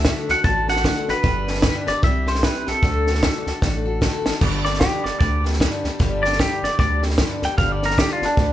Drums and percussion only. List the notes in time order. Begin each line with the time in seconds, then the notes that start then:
0.05 kick, snare, hi-hat pedal
0.29 snare
0.44 kick, snare
0.68 snare
0.76 snare
0.84 kick, snare, hi-hat pedal
1.09 snare
1.24 kick, snare
1.48 snare
1.55 snare
1.62 kick, snare, hi-hat pedal
1.87 snare
2.02 kick, snare
2.27 snare
2.35 snare
2.43 kick, snare, hi-hat pedal
2.67 snare
2.83 kick, snare
3.07 snare
3.15 snare
3.23 kick, snare, hi-hat pedal
3.47 snare
3.62 kick, snare
4.02 kick, snare, hi-hat pedal
4.26 snare
4.41 kick, snare, crash
4.65 snare
4.74 snare
4.81 kick, snare, hi-hat pedal
5.05 snare
5.21 kick, snare
5.45 snare
5.53 snare
5.60 kick, snare, hi-hat pedal
5.84 snare
6.00 kick, snare
6.25 snare
6.33 snare
6.39 kick, snare, hi-hat pedal
6.64 snare
6.79 kick, snare
7.03 snare
7.10 snare
7.18 kick, snare, hi-hat pedal
7.42 snare
7.58 kick, snare
7.83 snare
7.91 snare
7.98 kick, snare, hi-hat pedal
8.22 snare
8.37 kick, snare